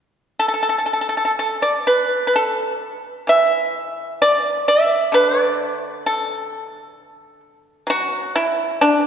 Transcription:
0.39 0.46 A4 medium
0.48 0.53 A4 soft
0.54 0.60 A4 medium
0.63 0.68 A4 soft
0.69 0.76 A4 soft
0.78 0.84 A4 soft
0.86 0.92 A4 soft
0.93 0.99 A4 soft
1.01 1.07 A4 soft
1.09 1.15 A4 soft
1.17 1.23 A4 medium
1.25 1.31 A4 soft
1.39 1.61 A4 medium
1.62 1.85 D5 medium
1.87 2.25 B4 medium
2.27 2.34 B4 medium
2.35 3.27 A4 medium
3.27 6.05 E3 medium
3.27 4.19 E5 medium
4.22 4.65 D5 medium
4.68 5.11 E5 medium
5.12 7.88 D3 medium
5.12 5.42 B4 medium
5.42 6.02 D5 medium
6.06 7.40 A4 medium
7.87 9.07 F#3 medium
7.87 8.32 F#4 loud
8.36 8.78 E4 loud
8.81 9.07 D4 medium

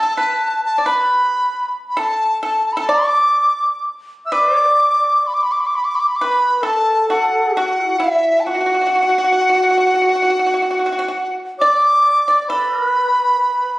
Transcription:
0.00 0.10 A4 medium
0.00 0.61 A5 medium
0.17 0.74 B4 medium
0.66 0.89 A5 medium
0.78 0.85 D5 soft
0.86 1.67 B4 medium
0.86 1.72 B5 medium
1.89 2.01 B5 medium
1.97 2.40 A4 medium
1.97 2.43 A5 medium
2.43 2.75 A4 medium
2.43 2.65 A5 medium
2.67 2.74 A5 medium
2.73 2.80 B5 medium
2.77 2.88 A4 medium
2.77 2.91 A5 medium
2.89 3.80 D5 medium
2.89 3.85 D6 medium
4.25 4.33 E5 medium
4.25 4.34 E6 medium
4.32 4.60 B4 medium
4.32 5.25 D5 medium
4.32 5.28 D6 medium
4.60 5.21 D5 medium
5.27 5.36 B5 medium
5.34 5.44 D6 medium
5.43 5.53 B5 medium
5.52 5.62 D6 medium
5.61 5.68 B5 medium
5.67 5.77 D6 medium
5.76 5.86 B5 medium
5.85 5.97 D6 medium
5.95 6.01 B5 medium
6.00 6.09 D6 medium
6.08 6.18 B5 medium
6.16 6.26 D6 medium
6.21 6.60 B4 medium
6.21 6.64 B4 medium
6.21 6.58 B5 medium
6.58 7.56 A4 medium
6.58 6.66 B5 medium
6.63 7.06 A4 medium
6.63 7.09 A5 medium
7.09 7.52 F#4 medium
7.09 7.52 F#5 medium
7.55 7.99 F#4 medium
7.55 7.84 F#4 medium
7.55 8.00 F#5 medium
7.84 7.98 E4 medium
7.98 8.44 E4 medium
7.98 8.42 E4 medium
7.98 8.42 E5 medium
8.40 8.47 A5 medium
8.45 11.29 F#4 medium
8.45 8.53 F#4 medium
8.45 11.33 F#5 medium
8.54 8.59 F#4 soft
8.61 8.65 F#4 soft
8.66 8.73 F#4 soft
8.74 8.80 F#4 medium
8.81 8.85 F#4 soft
8.87 8.94 F#4 medium
8.95 9.01 F#4 soft
9.03 9.08 F#4 soft
9.09 9.17 F#4 soft
9.18 9.23 F#4 medium
9.24 9.31 F#4 soft
9.32 9.40 F#4 soft
9.41 9.48 F#4 soft
9.49 9.53 F#4 soft
9.54 9.62 F#4 soft
9.63 9.69 F#4 soft
9.71 9.76 F#4 soft
9.78 9.85 F#4 soft
9.87 9.93 F#4 soft
9.94 10.00 F#4 soft
10.02 10.08 F#4 soft
10.09 10.14 F#4 soft
10.16 10.21 F#4 soft
10.22 10.29 F#4 soft
10.30 10.38 F#4 soft
10.39 10.45 F#4 soft
10.46 10.53 F#4 soft
10.54 10.61 F#4 medium
10.62 10.69 F#4 soft
10.71 10.77 F#4 medium
10.79 10.85 F#4 soft
10.86 10.91 F#4 medium
10.92 10.98 F#4 soft
10.99 11.05 F#4 medium
11.08 11.14 F#4 medium
11.58 12.44 D5 medium
11.58 12.22 D5 medium
11.58 12.44 D6 medium
12.28 12.47 D5 medium
12.44 12.49 D5 medium
12.48 12.74 A4 medium
12.48 13.35 B4 loud
12.48 13.79 B5 loud
12.74 12.88 A#4 medium
12.88 13.78 B4 medium
13.37 13.79 B4 medium

